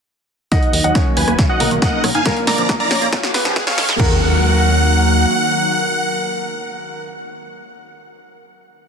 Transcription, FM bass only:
0.73 0.81 D#2 medium
0.84 0.92 D#2 medium
1.17 1.24 D#2 medium
1.28 1.35 D#1 medium
1.60 1.68 B1 loud
1.71 1.79 B1 medium
2.04 2.11 B1 medium
2.47 2.55 A#1 medium
2.58 2.66 A#1 medium
2.91 2.98 A#1 medium
3.02 3.09 A#2 medium
3.34 3.42 C#2 medium
3.45 3.53 C#2 medium
3.78 3.85 C#2 loud
3.89 3.96 G#1 medium
4.00 5.26 D#2 loud

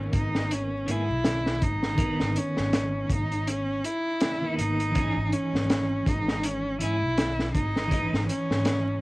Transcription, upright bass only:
0.00 0.11 G#1 medium
0.13 0.90 G#1 medium
0.88 1.07 G#2 medium
1.09 1.59 B1 medium
1.62 2.16 G#1 medium
2.20 2.34 G#1 medium
2.57 3.07 G#1 medium
3.10 3.81 G#1 medium
4.58 5.12 G#1 medium
5.16 5.30 G#1 medium
5.53 6.03 G#1 medium
6.06 6.82 G#1 medium
6.80 6.99 G#2 medium
7.02 7.51 B1 medium
7.55 8.09 G#1 medium
8.13 8.27 G#1 medium
8.50 9.00 G#1 medium

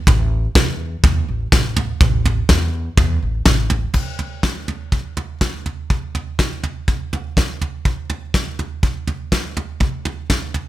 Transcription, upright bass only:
0.08 0.46 A1 loud
0.55 0.94 E2 loud
1.04 1.23 E2 medium
1.28 1.47 A1 medium
1.53 1.91 A1 medium
2.01 2.39 A1 loud
2.49 2.88 E2 medium
2.98 3.17 E2 loud
3.22 3.41 A1 medium
3.46 3.85 A1 medium

